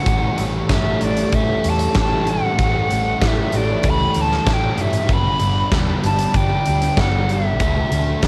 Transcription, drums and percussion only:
0.06 kick, closed hi-hat
0.38 closed hi-hat
0.69 kick, snare, closed hi-hat
1.01 closed hi-hat
1.17 closed hi-hat
1.32 kick, closed hi-hat
1.64 closed hi-hat
1.79 closed hi-hat
1.94 kick, snare, closed hi-hat
2.27 closed hi-hat
2.59 kick, closed hi-hat
2.90 closed hi-hat
3.21 kick, snare, closed hi-hat
3.52 closed hi-hat
3.83 kick, closed hi-hat
4.14 closed hi-hat
4.32 snare
4.47 kick, snare, closed hi-hat
4.78 closed hi-hat
4.93 closed hi-hat
5.09 kick, closed hi-hat
5.40 closed hi-hat
5.72 kick, snare, closed hi-hat
6.04 closed hi-hat
6.19 closed hi-hat
6.34 kick, closed hi-hat
6.66 closed hi-hat
6.82 closed hi-hat
6.97 kick, snare, closed hi-hat
7.29 closed hi-hat
7.60 kick, closed hi-hat
7.92 closed hi-hat
8.22 kick, snare, closed hi-hat

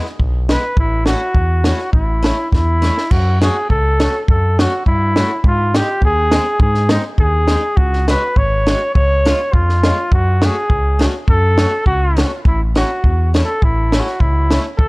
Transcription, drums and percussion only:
0.05 snare
0.20 kick
0.49 snare
0.77 kick
1.06 snare
1.35 kick
1.64 snare
1.79 snare
1.93 kick
2.24 snare
2.53 kick, snare
2.83 snare
2.98 snare
3.11 kick, crash
3.42 snare
3.70 kick
4.00 snare
4.28 kick
4.59 snare
4.86 kick
5.16 snare
5.44 kick
5.74 snare
6.02 kick
6.31 snare
6.60 kick
6.75 snare
6.89 snare
7.18 kick
7.48 snare
7.77 kick
7.93 snare
8.08 snare
8.36 kick
8.67 snare
8.95 kick
9.26 snare
9.53 kick
9.69 snare
9.83 snare
10.12 kick
10.42 snare
10.70 kick
11.01 snare
11.28 kick
11.58 snare
11.86 kick
12.18 snare
12.45 kick
12.76 snare
13.04 kick
13.35 snare
13.62 kick
13.92 snare
14.07 snare
14.20 kick
14.51 snare
14.79 kick

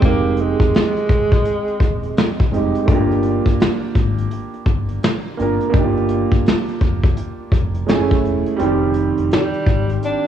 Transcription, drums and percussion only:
0.02 kick, closed hi-hat
0.37 closed hi-hat
0.60 kick, closed hi-hat
0.74 snare, closed hi-hat
0.96 closed hi-hat
1.09 kick, closed hi-hat
1.32 kick, closed hi-hat
1.45 closed hi-hat
1.68 closed hi-hat
1.80 kick, closed hi-hat
2.03 closed hi-hat
2.17 snare, closed hi-hat
2.39 kick, closed hi-hat
2.54 closed hi-hat
2.75 closed hi-hat
2.88 kick, closed hi-hat
3.11 closed hi-hat
3.23 closed hi-hat
3.46 kick, closed hi-hat
3.60 snare, closed hi-hat
3.95 kick, closed hi-hat
4.18 closed hi-hat
4.31 closed hi-hat
4.54 closed hi-hat
4.66 kick, closed hi-hat
4.88 closed hi-hat
5.03 snare, closed hi-hat
5.39 closed hi-hat
5.60 closed hi-hat
5.73 kick, closed hi-hat
5.97 closed hi-hat
6.08 closed hi-hat
6.32 kick, closed hi-hat
6.46 snare, closed hi-hat
6.68 closed hi-hat
6.81 kick, closed hi-hat
7.03 kick, closed hi-hat
7.17 closed hi-hat
7.52 kick, closed hi-hat
7.74 closed hi-hat
7.88 snare, closed hi-hat
8.11 kick
8.25 closed hi-hat
8.46 closed hi-hat
8.59 closed hi-hat
8.94 closed hi-hat
9.18 closed hi-hat
9.32 snare, closed hi-hat
9.54 closed hi-hat
9.67 kick, closed hi-hat
9.90 closed hi-hat
10.03 closed hi-hat

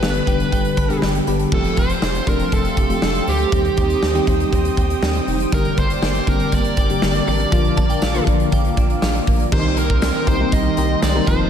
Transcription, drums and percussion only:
0.03 snare
0.15 closed hi-hat
0.27 kick, closed hi-hat
0.40 closed hi-hat
0.52 kick, closed hi-hat
0.65 closed hi-hat
0.77 kick, closed hi-hat
0.90 closed hi-hat
1.02 snare
1.15 closed hi-hat
1.27 closed hi-hat
1.39 closed hi-hat
1.52 kick, crash
1.64 closed hi-hat
1.77 kick, closed hi-hat
1.90 closed hi-hat
2.02 snare
2.15 closed hi-hat
2.27 kick, closed hi-hat
2.40 closed hi-hat
2.52 kick, closed hi-hat
2.65 closed hi-hat
2.77 kick, closed hi-hat
2.90 closed hi-hat
3.02 snare
3.15 closed hi-hat
3.27 open hi-hat
3.40 closed hi-hat
3.52 kick, closed hi-hat
3.65 closed hi-hat
3.77 kick, closed hi-hat
3.90 closed hi-hat
4.03 snare
4.15 closed hi-hat
4.27 kick, closed hi-hat
4.40 closed hi-hat
4.53 kick, closed hi-hat
4.65 closed hi-hat
4.77 kick, closed hi-hat
4.90 closed hi-hat
5.03 snare
5.15 closed hi-hat
5.28 open hi-hat
5.40 closed hi-hat
5.52 kick, closed hi-hat
5.65 closed hi-hat
5.77 kick, closed hi-hat
5.90 closed hi-hat
6.03 snare
6.15 closed hi-hat
6.27 kick, closed hi-hat
6.40 closed hi-hat
6.52 kick, closed hi-hat
6.64 closed hi-hat
6.77 kick, closed hi-hat
6.90 closed hi-hat
7.02 snare
7.15 closed hi-hat
7.27 open hi-hat
7.40 closed hi-hat
7.52 kick, closed hi-hat
7.65 closed hi-hat
7.77 kick, closed hi-hat
7.90 closed hi-hat
8.02 snare, tambourine
8.15 closed hi-hat
8.27 kick, closed hi-hat
8.40 closed hi-hat
8.52 kick, closed hi-hat
8.65 closed hi-hat
8.77 kick, closed hi-hat
8.90 closed hi-hat
9.02 snare, tambourine
9.15 closed hi-hat
9.27 kick, open hi-hat
9.40 closed hi-hat
9.52 kick, crash
9.77 closed hi-hat
9.90 kick
10.02 snare, closed hi-hat, tambourine
10.27 kick, closed hi-hat
10.52 kick, closed hi-hat
10.77 closed hi-hat
11.02 snare, closed hi-hat, tambourine
11.27 kick, closed hi-hat

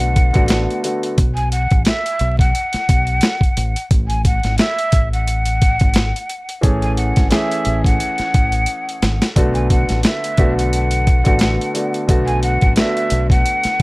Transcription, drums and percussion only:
0.00 closed hi-hat
0.16 kick, closed hi-hat
0.34 kick, closed hi-hat
0.48 snare, closed hi-hat
0.70 closed hi-hat
0.84 closed hi-hat
1.03 closed hi-hat
1.18 kick, closed hi-hat
1.37 closed hi-hat
1.52 closed hi-hat
1.71 kick, closed hi-hat
1.85 snare, closed hi-hat
2.06 closed hi-hat
2.19 closed hi-hat
2.39 kick, closed hi-hat
2.55 closed hi-hat
2.73 snare, closed hi-hat
2.89 kick, closed hi-hat
3.07 closed hi-hat
3.21 snare, closed hi-hat
3.41 kick, closed hi-hat
3.57 closed hi-hat
3.76 closed hi-hat
3.91 kick, closed hi-hat
4.10 closed hi-hat
4.25 kick, closed hi-hat
4.43 snare, closed hi-hat
4.58 snare, closed hi-hat
4.79 closed hi-hat
4.92 kick, closed hi-hat
5.13 closed hi-hat
5.28 closed hi-hat
5.45 closed hi-hat
5.62 kick, closed hi-hat
5.79 kick, closed hi-hat
5.94 snare, closed hi-hat
6.16 closed hi-hat
6.29 closed hi-hat
6.49 closed hi-hat
6.63 kick, closed hi-hat
6.82 closed hi-hat
6.97 closed hi-hat
7.16 kick, snare, closed hi-hat
7.31 snare, closed hi-hat
7.51 closed hi-hat
7.65 closed hi-hat
7.84 kick, closed hi-hat
8.00 closed hi-hat
8.18 snare, closed hi-hat
8.34 kick, closed hi-hat
8.52 closed hi-hat
8.66 closed hi-hat
8.89 closed hi-hat
9.02 snare, closed hi-hat
9.22 snare, closed hi-hat
9.36 kick, closed hi-hat
9.55 closed hi-hat
9.70 kick, closed hi-hat
9.89 snare, closed hi-hat
10.03 snare, closed hi-hat
10.24 closed hi-hat
10.37 kick, closed hi-hat
10.59 closed hi-hat
10.73 closed hi-hat
10.91 closed hi-hat
11.07 kick, closed hi-hat
11.25 kick, closed hi-hat
11.39 snare, closed hi-hat
11.61 closed hi-hat
11.75 closed hi-hat
11.94 closed hi-hat
12.09 kick, closed hi-hat
12.28 closed hi-hat
12.43 closed hi-hat
12.61 kick, closed hi-hat
12.76 snare, closed hi-hat
12.97 closed hi-hat
13.10 closed hi-hat
13.30 kick, closed hi-hat
13.46 closed hi-hat
13.63 snare, closed hi-hat

